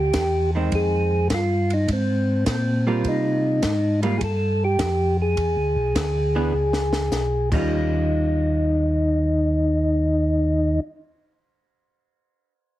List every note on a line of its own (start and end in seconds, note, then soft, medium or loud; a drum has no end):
0.00 0.12 D2 medium
0.00 0.51 G4 loud
0.14 0.70 E2 medium
0.14 kick soft
0.14 snare medium
0.14 hi-hat pedal medium
0.14 ride medium
0.55 1.27 D#3 medium
0.55 1.28 G#3 medium
0.55 1.28 C4 medium
0.72 1.28 F2 medium
0.72 1.28 G#4 medium
0.72 kick soft
0.72 ride medium
1.30 1.87 G2 medium
1.30 kick soft
1.30 snare medium
1.30 hi-hat pedal soft
1.30 ride medium
1.34 1.73 F4 medium
1.70 1.91 D#4 medium
1.70 ride soft
1.88 2.45 G#2 medium
1.88 kick soft
1.88 ride medium
1.93 2.45 C4 medium
2.46 3.03 A#2 medium
2.46 3.08 C4 medium
2.46 kick soft
2.46 snare medium
2.46 hi-hat pedal medium
2.46 ride medium
2.87 3.59 G3 medium
2.87 3.60 A#3 medium
2.87 3.60 F4 medium
3.04 3.61 C3 medium
3.04 4.00 D#4 medium
3.04 kick soft
3.04 ride soft
3.62 4.19 G#2 medium
3.62 kick soft
3.62 snare medium
3.62 hi-hat pedal medium
3.62 ride medium
4.03 4.19 G3 medium
4.03 4.19 A#3 medium
4.03 4.20 F4 medium
4.03 4.17 F4 medium
4.03 ride soft
4.18 4.77 G2 medium
4.18 4.22 G#4 medium
4.18 kick soft
4.18 ride medium
4.24 4.64 A4 medium
4.64 5.17 G4 loud
4.79 5.35 F2 medium
4.79 kick soft
4.79 snare medium
4.79 hi-hat pedal medium
4.79 ride medium
5.22 7.49 G#4 medium
5.37 5.56 E2 medium
5.37 kick soft
5.37 ride medium
5.57 5.76 D2 medium
5.75 5.94 B1 medium
5.95 6.52 D2 medium
5.95 kick soft
5.95 snare medium
5.95 hi-hat pedal medium
5.95 ride medium
6.35 6.52 E3 medium
6.35 6.52 B3 medium
6.35 6.52 D4 medium
6.35 6.52 G#4 medium
6.52 7.10 C#2 medium
6.73 snare medium
6.93 snare medium
7.11 7.50 B1 medium
7.11 snare medium
7.11 hi-hat pedal medium
7.52 10.79 D#2 medium
7.52 10.93 D#3 medium
7.52 10.94 G3 medium
7.52 10.95 C#4 medium
7.52 10.80 D#4 medium
7.52 10.96 F4 medium
7.52 kick soft
7.52 crash medium